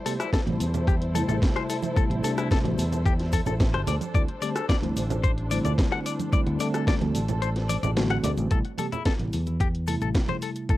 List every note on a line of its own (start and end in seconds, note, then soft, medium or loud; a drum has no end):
0.00 8.47 G3 medium
0.00 3.83 E4 medium
0.00 6.02 A4 medium
0.00 8.47 C5 medium
0.05 0.16 C3 medium
0.05 0.16 G3 medium
0.05 0.16 A3 medium
0.05 0.16 B3 medium
0.05 0.16 G4 medium
0.05 0.13 A4 medium
0.05 open hi-hat loud
0.05 cabasa medium
0.05 shaker medium
0.20 0.30 E4 medium
0.20 cross-stick medium
0.20 closed hi-hat soft
0.20 cabasa medium
0.20 shaker soft
0.33 0.40 A4 medium
0.33 kick loud
0.33 snare loud
0.33 closed hi-hat medium
0.33 cabasa soft
0.33 shaker soft
0.46 0.56 A1 loud
0.46 0.63 C3 medium
0.46 0.63 G3 medium
0.46 0.63 A3 medium
0.46 0.63 B3 medium
0.46 0.63 E4 medium
0.46 closed hi-hat soft
0.46 high conga loud
0.60 1.22 E2 medium
0.60 open hi-hat loud
0.60 cabasa medium
0.60 shaker medium
0.74 closed hi-hat soft
0.74 low conga medium
0.74 cabasa medium
0.74 shaker soft
0.87 0.94 G4 medium
0.87 kick loud
0.87 closed hi-hat medium
0.87 cabasa soft
0.87 shaker soft
1.02 closed hi-hat soft
1.14 1.93 C3 medium
1.14 1.93 G3 medium
1.14 1.93 A3 medium
1.14 1.94 E4 medium
1.14 1.22 A4 medium
1.14 open hi-hat loud
1.14 high conga medium
1.14 cabasa medium
1.14 shaker medium
1.28 1.38 A1 medium
1.28 1.35 A4 medium
1.28 closed hi-hat soft
1.28 low conga medium
1.28 cabasa medium
1.28 shaker soft
1.42 kick loud
1.42 snare loud
1.42 closed hi-hat medium
1.42 cabasa soft
1.42 shaker soft
1.56 1.63 C5 loud
1.56 cross-stick medium
1.56 closed hi-hat soft
1.70 1.76 A4 medium
1.70 open hi-hat loud
1.70 cabasa loud
1.70 shaker medium
1.82 closed hi-hat soft
1.82 high conga medium
1.82 cabasa medium
1.82 shaker soft
1.96 2.20 C3 medium
1.96 2.20 G3 medium
1.96 2.21 A3 medium
1.96 2.21 B3 medium
1.96 2.21 E4 loud
1.96 2.04 A4 medium
1.96 muted fingered electric bass stroke soft
1.96 kick loud
1.96 closed hi-hat medium
1.96 cabasa soft
1.96 shaker soft
2.10 2.20 A1 loud
2.10 closed hi-hat soft
2.23 2.61 C3 loud
2.23 2.61 G3 medium
2.23 2.61 A3 medium
2.23 2.62 D4 loud
2.23 2.31 A4 medium
2.23 open hi-hat loud
2.23 cabasa medium
2.23 shaker medium
2.37 2.48 E4 medium
2.37 cross-stick medium
2.37 closed hi-hat soft
2.37 cabasa soft
2.37 shaker soft
2.51 2.58 A4 medium
2.51 kick loud
2.51 snare loud
2.51 closed hi-hat medium
2.51 cabasa soft
2.51 shaker soft
2.64 2.74 A1 loud
2.64 2.81 C3 medium
2.64 2.81 G3 medium
2.64 2.81 A3 medium
2.64 2.81 B3 medium
2.64 2.81 F#4 medium
2.64 closed hi-hat soft
2.64 high conga medium
2.77 3.40 E2 medium
2.77 open hi-hat loud
2.77 cabasa medium
2.77 shaker medium
2.92 closed hi-hat soft
2.92 low conga medium
2.92 cabasa soft
2.92 shaker soft
3.05 3.13 G4 medium
3.05 kick loud
3.05 closed hi-hat medium
3.05 cabasa soft
3.05 shaker soft
3.19 snare soft
3.19 closed hi-hat soft
3.32 3.40 A4 medium
3.32 kick medium
3.32 open hi-hat loud
3.32 high conga medium
3.32 cabasa loud
3.32 shaker medium
3.46 3.75 A1 medium
3.46 3.53 A4 medium
3.46 closed hi-hat soft
3.46 low conga medium
3.46 cabasa medium
3.46 shaker soft
3.60 kick loud
3.60 snare loud
3.60 closed hi-hat medium
3.60 cabasa soft
3.60 shaker soft
3.73 3.83 G1 medium
3.73 3.81 C5 loud
3.73 cross-stick medium
3.73 closed hi-hat soft
3.87 3.97 D2 medium
3.87 8.47 D4 medium
3.87 3.95 D5 medium
3.87 open hi-hat loud
3.87 low conga medium
3.87 cabasa medium
3.87 shaker medium
4.01 closed hi-hat soft
4.01 high conga medium
4.01 cabasa soft
4.01 shaker soft
4.14 4.24 D2 loud
4.14 4.25 D3 medium
4.14 4.25 G3 medium
4.14 4.25 A3 medium
4.14 4.25 C4 medium
4.14 4.25 E4 loud
4.14 4.22 D5 medium
4.14 kick loud
4.14 closed hi-hat medium
4.14 cabasa soft
4.14 shaker soft
4.29 closed hi-hat soft
4.42 4.52 D3 medium
4.42 4.52 G3 medium
4.42 4.52 A3 medium
4.42 4.52 C4 medium
4.42 4.53 G4 medium
4.42 4.49 D5 medium
4.42 open hi-hat loud
4.42 cabasa loud
4.42 shaker medium
4.56 4.66 A4 medium
4.56 cross-stick medium
4.56 closed hi-hat soft
4.56 cabasa medium
4.56 shaker soft
4.69 4.76 D5 medium
4.69 kick loud
4.69 snare loud
4.69 closed hi-hat medium
4.69 cabasa soft
4.69 shaker soft
4.82 4.92 D2 loud
4.82 4.99 D3 medium
4.82 4.99 G3 medium
4.82 4.99 A3 medium
4.82 4.99 C4 medium
4.82 4.99 E4 medium
4.82 closed hi-hat soft
4.82 high conga medium
4.96 5.58 A1 loud
4.96 open hi-hat loud
4.96 cabasa medium
4.96 shaker medium
5.10 closed hi-hat soft
5.10 low conga medium
5.10 cabasa medium
5.10 shaker soft
5.23 5.31 C5 medium
5.23 kick loud
5.23 closed hi-hat medium
5.23 cabasa soft
5.23 shaker soft
5.38 closed hi-hat soft
5.50 6.29 D3 medium
5.50 6.30 G3 medium
5.50 6.30 A3 medium
5.50 6.30 C4 medium
5.50 6.30 E4 medium
5.50 5.58 D5 medium
5.50 open hi-hat loud
5.50 high conga medium
5.50 cabasa loud
5.50 shaker medium
5.64 5.74 D2 medium
5.64 5.72 D5 medium
5.64 closed hi-hat soft
5.64 low conga medium
5.64 cabasa medium
5.64 shaker soft
5.78 kick loud
5.78 snare loud
5.78 closed hi-hat medium
5.78 cabasa soft
5.78 shaker soft
5.92 5.99 F#5 loud
5.92 cross-stick medium
5.92 closed hi-hat soft
6.06 8.49 A4 medium
6.06 6.13 D5 medium
6.06 open hi-hat loud
6.06 cabasa loud
6.06 shaker medium
6.19 closed hi-hat soft
6.19 high conga medium
6.19 cabasa medium
6.19 shaker soft
6.32 6.57 D3 medium
6.32 6.57 G3 medium
6.32 6.57 A3 medium
6.32 6.57 C4 medium
6.32 6.57 E4 loud
6.32 6.40 D5 medium
6.32 muted fingered electric bass stroke soft
6.32 kick loud
6.32 closed hi-hat medium
6.32 cabasa soft
6.32 shaker soft
6.47 6.56 D2 loud
6.47 closed hi-hat soft
6.59 6.98 D3 loud
6.59 6.98 G3 loud
6.59 6.98 A3 medium
6.59 6.98 C4 medium
6.59 6.98 D4 loud
6.59 6.67 D5 medium
6.59 open hi-hat loud
6.59 cabasa medium
6.59 shaker medium
6.74 6.84 A4 medium
6.74 cross-stick medium
6.74 closed hi-hat soft
6.74 cabasa medium
6.74 shaker soft
6.87 6.94 D5 medium
6.87 kick loud
6.87 snare loud
6.87 closed hi-hat medium
6.87 cabasa soft
6.87 shaker soft
7.01 7.11 D2 loud
7.01 7.17 D3 medium
7.01 7.17 G3 medium
7.01 7.17 A3 medium
7.01 7.17 C4 medium
7.01 7.18 F#4 medium
7.01 closed hi-hat soft
7.01 high conga medium
7.15 7.76 A1 medium
7.15 open hi-hat loud
7.15 cabasa medium
7.15 shaker medium
7.29 closed hi-hat soft
7.29 low conga medium
7.29 cabasa medium
7.29 shaker soft
7.42 7.49 C5 medium
7.42 closed hi-hat medium
7.42 cabasa soft
7.42 shaker soft
7.56 snare soft
7.56 closed hi-hat soft
7.69 7.76 D5 medium
7.69 open hi-hat loud
7.69 high conga medium
7.69 cabasa loud
7.69 shaker medium
7.83 8.17 A1 medium
7.83 7.90 D5 medium
7.83 closed hi-hat soft
7.83 low conga medium
7.83 cabasa medium
7.83 shaker soft
7.96 8.47 D3 medium
7.96 8.48 G3 medium
7.96 8.48 A3 medium
7.96 8.48 C4 medium
7.96 8.48 F#4 loud
7.96 snare loud
7.96 closed hi-hat medium
7.96 cabasa soft
7.96 shaker soft
8.10 8.17 F#5 loud
8.10 cross-stick medium
8.10 closed hi-hat soft
8.23 8.33 D2 loud
8.23 8.31 D5 medium
8.23 open hi-hat loud
8.23 low conga loud
8.23 cabasa loud
8.23 shaker medium
8.37 8.47 A1 loud
8.37 closed hi-hat soft
8.37 high conga medium
8.37 cabasa soft
8.37 shaker soft
8.51 8.61 A1 medium
8.51 8.61 C3 medium
8.51 8.61 G3 medium
8.51 8.61 A3 medium
8.51 8.61 B3 medium
8.51 8.62 E4 loud
8.51 8.58 A4 medium
8.51 kick loud
8.51 closed hi-hat medium
8.51 cabasa soft
8.65 closed hi-hat soft
8.78 8.88 C3 medium
8.78 8.89 G3 medium
8.78 8.89 A3 medium
8.78 8.89 B3 medium
8.78 8.89 G4 medium
8.78 8.85 A4 medium
8.78 open hi-hat loud
8.78 high conga medium
8.78 cabasa medium
8.92 9.02 E4 medium
8.92 closed hi-hat soft
8.92 low conga medium
8.92 cabasa medium
9.05 9.13 A4 medium
9.05 kick loud
9.05 snare loud
9.05 closed hi-hat medium
9.05 cabasa soft
9.19 9.29 A1 loud
9.19 9.35 C3 medium
9.19 9.35 G3 medium
9.19 9.36 A3 medium
9.19 9.36 B3 medium
9.19 9.36 E4 medium
9.19 closed hi-hat soft
9.33 9.95 E2 medium
9.33 open hi-hat loud
9.33 cabasa medium
9.46 closed hi-hat soft
9.46 high conga medium
9.46 cabasa medium
9.60 9.67 G4 medium
9.60 kick loud
9.60 closed hi-hat medium
9.60 cabasa soft
9.75 closed hi-hat soft
9.86 10.66 C3 medium
9.86 10.66 G3 medium
9.86 10.66 A3 medium
9.86 10.67 E4 medium
9.86 9.94 A4 medium
9.86 open hi-hat loud
9.86 cabasa loud
10.01 10.11 A1 medium
10.01 10.08 A4 medium
10.01 closed hi-hat soft
10.01 cabasa medium
10.14 kick loud
10.14 snare loud
10.14 closed hi-hat medium
10.14 cabasa soft
10.28 10.35 C5 medium
10.28 closed hi-hat soft
10.28 high conga medium
10.28 low conga medium
10.42 10.49 A4 medium
10.42 open hi-hat loud
10.42 cabasa medium
10.56 closed hi-hat soft
10.56 cabasa soft
10.69 10.77 C3 medium
10.69 10.77 G3 medium
10.69 10.77 A3 medium
10.69 10.77 B3 medium
10.69 10.77 E4 loud
10.69 10.76 A4 medium
10.69 muted fingered electric bass stroke soft
10.69 kick loud
10.69 closed hi-hat medium
10.69 cabasa soft